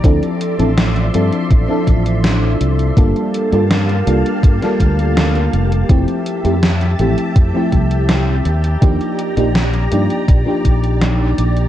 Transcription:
Already playing: D5
0.04 D2 F3 C4 D4 E4 A4 E5 C6, kick, closed hi-hat
0.23 closed hi-hat
0.41 closed hi-hat
0.58 A1 F3 C4 D4 E4 A4, closed hi-hat
0.78 snare, closed hi-hat
0.96 closed hi-hat
1.14 G2 F3 C4 D4 E4 A4, closed hi-hat
1.32 closed hi-hat
1.50 A1, kick, closed hi-hat
1.68 F3 C4 D4 E4 A4
1.87 A1, kick, closed hi-hat
2.06 closed hi-hat
2.24 snare, closed hi-hat
2.61 C2, closed hi-hat
2.79 closed hi-hat
2.97 G1 G3 A#3 D4 F4 G4 A4 F5 A5, kick, closed hi-hat
3.16 closed hi-hat
3.34 closed hi-hat
3.52 G2 G3 A#3 D4 F4 A4, closed hi-hat
3.71 snare, closed hi-hat
3.89 closed hi-hat
4.06 C2 G3 A#3 D4 F4 A4, closed hi-hat
4.26 closed hi-hat
4.43 G2, kick, closed hi-hat
4.61 G3 A#3 D4 F4 A4, snare, closed hi-hat
4.80 D2, kick, closed hi-hat
4.99 closed hi-hat
5.17 snare, closed hi-hat
5.35 closed hi-hat
5.53 F1, closed hi-hat
5.72 closed hi-hat
5.89 F1 F3 A3 C4 E4 G4 E5 A5, kick, closed hi-hat
6.08 closed hi-hat
6.26 closed hi-hat
6.44 F2 F3 A3 C4 E4 G4, closed hi-hat
6.63 snare, closed hi-hat
6.81 closed hi-hat
6.99 A1 F3 A3 C4 E4 G4, closed hi-hat
7.18 closed hi-hat
7.36 F2, kick, closed hi-hat
7.53 F3 A3 C4 E4 G4
7.72 C2, kick, closed hi-hat
7.91 closed hi-hat
8.09 snare, closed hi-hat
8.45 D#2 D5 A#5, closed hi-hat
8.64 closed hi-hat
8.81 D#2 F3 A#3 D4 D#4 G4, kick, closed hi-hat
9.01 closed hi-hat
9.19 closed hi-hat
9.36 A#1 F3 A#3 D4 D#4 G4, closed hi-hat
9.55 snare, closed hi-hat
9.74 closed hi-hat
9.91 G2 F3 A#3 D4 D#4 G4, closed hi-hat
10.10 closed hi-hat
10.28 A#1, kick, closed hi-hat
10.45 F3 A#3 D4 D#4 G4
10.65 A#1, kick, closed hi-hat
10.84 closed hi-hat
11.01 snare, closed hi-hat
11.38 A#1, closed hi-hat
11.57 closed hi-hat

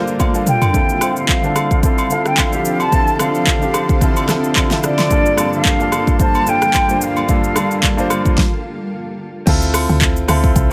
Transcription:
Already playing: D3 G3 A#3 D4 F4 A4 A#4 C5
0.07 shaker
0.20 kick, high tom, high agogo, low woodblock, shaker
0.34 A#3 D4 F4 A4, shaker
0.47 G5, mid tom, shaker
0.62 floor tom, high agogo, shaker
0.73 D3 F3 C4 D4 E4 F4 A4, kick, shaker
0.89 shaker
1.00 D3 C4 E4 F4 C5, cross-stick, high agogo, shaker
1.16 F5, shaker
1.29 kick, clap, shaker
1.43 D3 C4 D4 F4 A4, shaker
1.56 cross-stick, high agogo, shaker
1.71 kick, shaker
1.82 D3 C4 E4 F4 A4 F5, kick, shaker
1.98 high agogo, shaker
2.09 D3 C4 E4 F4 A4, shaker
2.26 G5, cross-stick, shaker
2.38 F5, kick, clap, high agogo, shaker
2.52 D3 C4 E4 F4 G4, shaker
2.65 shaker
2.80 A5, high agogo, shaker
2.91 D3 C4 E4 F4 A4, kick, shaker
3.07 shaker
3.19 D3 C4 D4 F4 A4 F5, cross-stick, high agogo, shaker
3.35 shaker
3.47 kick, clap, shaker
3.61 D3 C4 D4 F4 G4, shaker
3.74 cross-stick, high agogo, shaker
3.89 kick, shaker
4.00 D3 C4 E4 F4 A4, kick, shaker
4.16 high agogo, shaker
4.28 D3 C4 E4 F4 A4, cross-stick, snare, shaker
4.44 shaker
4.56 kick, clap, high agogo, shaker
4.70 D3 C4 E4 F4 A4, snare, shaker
4.83 D5, cross-stick, shaker
4.98 snare, high agogo, shaker
5.09 G2 D3 G3 A#3 D4 F4 A4, kick, shaker
5.26 shaker
5.37 G2 A#3 D4 F4 A4, cross-stick, high agogo, shaker
5.53 F5, shaker
5.65 kick, clap, shaker
5.79 G2 A#3 D4 F4 A4, shaker
5.92 cross-stick, high agogo, shaker
6.07 kick, shaker
6.18 G2 A#3 D4 F4 C5 A5, kick, shaker
6.35 high agogo, shaker
6.46 G2 A#3 D4 F4 A4 G5, shaker
6.62 cross-stick, shaker
6.74 kick, clap, high agogo, shaker
6.88 G2 A#3 D4 F4 C5, shaker
7.01 F5, shaker
7.16 high agogo, shaker
7.27 G2 A#3 D4 F4 A4, kick, shaker
7.44 shaker
7.54 G2 A#3 D4 F4 A4, cross-stick, high agogo, shaker
7.71 shaker
7.83 kick, clap, shaker
7.97 G2 A#3 D4 F4 C5, shaker
8.10 cross-stick, high agogo, shaker
8.25 kick, shaker
8.38 kick, snare
9.46 D2 C4 E4 F4 A4, kick, crash, shaker
9.62 shaker
9.74 cross-stick, open hi-hat, high agogo, shaker
9.89 D2, shaker
10.01 kick, clap, shaker
10.16 shaker
10.28 D2 C4 E4 F4 A4, cross-stick, open hi-hat, high agogo, shaker
10.44 kick, shaker
10.56 C2, kick, shaker
10.70 C4

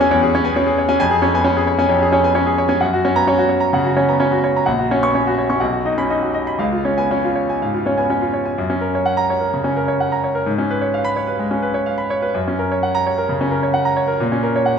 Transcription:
Already playing: E2 B3 G#4 C#5
0.00 C#4 G#5
0.11 E2 C#5
0.23 G#4
0.35 C#4 C#5
0.44 B3 G#5
0.56 C#4 C#5
0.67 G#4
0.78 C#5
0.89 C#4 G#5
1.00 F2 G#5
1.11 G#4
1.22 C#4 C#5
1.34 B3 G#5
1.44 C#4 C#5
1.57 G#4
1.67 C#5
1.79 C#4 G#5
1.89 F2 C#5
2.02 G#4
2.12 C#4 C#5
2.24 B3 G#5
2.35 C#4 C#5
2.47 G#4
2.58 C#5
2.69 C#4 G#5
2.80 F#2 F#5
2.93 F#4
3.05 C#4 C#5
3.15 B3 A#5
3.27 C#4 C#5
3.38 F#4
3.49 C#5
3.60 A#5
3.73 C#3 F#5
3.85 F#4
3.97 C#4 C#5
4.08 B3 A#5
4.20 C#4 C#5
4.32 F#4
4.44 C#5
4.56 A#5
4.66 A#1 F#5
4.79 F#4
4.91 C#4 C#5
5.03 B3 C#6
5.15 C#4 C#5
5.27 F#4
5.38 C#5
5.50 C#4 C#6
5.60 B1 F#5
5.73 F#4
5.86 D#4 D#5
5.98 C#4 B5
6.10 D#4 D#5
6.22 F#4
6.34 D#5
6.47 B5
6.59 C#2 F5
6.72 F4
6.85 C#4 C#5
6.98 B3 G#5
7.11 C#4 C#5
7.24 F4
7.35 C#5
7.50 G#5
7.62 G#2 F5
7.74 F4
7.86 C#4 C#5
7.98 B3 G#5
8.10 C#4 C#5
8.21 F4
8.34 C#5
8.45 G#5
8.58 F#2
8.70 C#4
8.81 A#4
8.95 C#5
9.06 F#5
9.17 A#5
9.30 C#5
9.41 A#4
9.54 C#3
9.64 C#4
9.76 A#4
9.88 C#5
10.00 F#5
10.12 A#5
10.24 C#5
10.35 A#4
10.46 G#2
10.58 C#4
10.71 B4
10.81 C#5
10.94 F5
11.05 B5
11.16 C#5
11.27 B4
11.39 G#3
11.51 C#4
11.62 B4
11.74 C#5
11.86 F5
11.98 B5
12.10 C#5
12.22 B4
12.34 F#2
12.48 C#4
12.59 A#4
12.72 C#5
12.83 F#5
12.95 A#5
13.07 C#5
13.18 A#4
13.29 C#3
13.41 C#4
13.51 A#4
13.63 C#5
13.74 F#5
13.85 A#5
13.96 C#5
14.07 A#4
14.20 A#2
14.32 C#4
14.43 A#4
14.56 C#5
14.66 F#5

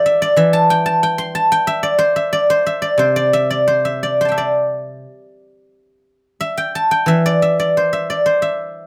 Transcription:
Already playing: E3 G4 A4 C5 D5
0.06 E5
0.22 D5
0.36 E3 E5
0.53 A5
0.70 G5
0.86 A5
1.03 G5
1.18 C6
1.35 A5
1.52 G5
1.67 E5
1.83 D5
1.98 C5
2.16 E5
2.33 D5
2.50 C5
2.66 E5
2.82 D5
2.98 C3 C5
3.16 D5
3.33 E5
3.50 D5
3.68 C5
3.85 E5
4.03 D5
4.21 C5 C6
4.25 G5 A5
4.32 E5
4.38 D5
6.41 E5
6.58 G5
6.75 A5
6.91 G5
7.06 E3 E5
7.26 D5
7.42 E5
7.60 D5
7.77 C5
7.93 E5
8.10 D5
8.26 C5
8.42 E5

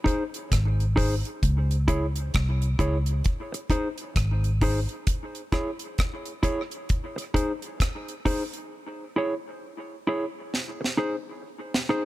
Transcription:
0.04 D#4 G#4 C5, kick, closed hi-hat
0.34 closed hi-hat
0.52 G#1, kick, cross-stick, closed hi-hat
0.80 closed hi-hat
0.96 D#4 G#4 C5, kick, open hi-hat
1.25 closed hi-hat
1.43 C#2, kick, closed hi-hat
1.71 closed hi-hat
1.88 E4 G#4 C#5, kick, closed hi-hat
2.16 closed hi-hat
2.34 C2, kick, cross-stick, closed hi-hat
2.62 closed hi-hat
2.79 C#2 E4 G#4 C#5, kick, closed hi-hat
3.06 closed hi-hat
3.24 kick, closed hi-hat
3.52 muted clean electric guitar stroke, closed hi-hat
3.70 D#4 G#4 C5, kick, closed hi-hat
3.98 closed hi-hat
4.16 G#1, kick, cross-stick, closed hi-hat
4.44 closed hi-hat
4.61 D#4 G#4 C5, kick, open hi-hat
4.89 closed hi-hat
5.07 kick, closed hi-hat
5.35 closed hi-hat
5.52 E4 G#4 C#5, kick, cross-stick, closed hi-hat
5.79 closed hi-hat
5.98 kick, cross-stick, closed hi-hat
6.26 closed hi-hat
6.43 E4 G#4 C#5, kick, closed hi-hat
6.71 closed hi-hat
6.89 kick, closed hi-hat
7.16 muted clean electric guitar stroke, closed hi-hat
7.34 D#4 G#4 C5, kick, closed hi-hat
7.62 closed hi-hat
7.80 kick, cross-stick, closed hi-hat
8.08 closed hi-hat
8.25 D#4 G#4 C5, kick, open hi-hat
8.53 closed hi-hat
9.16 E4 G#4 C#5
10.07 E4 G#4 C#5
10.54 snare
10.81 muted clean electric guitar stroke, snare
10.97 D#4 G#4 C5
11.74 snare
11.89 D#4 G#4 C5

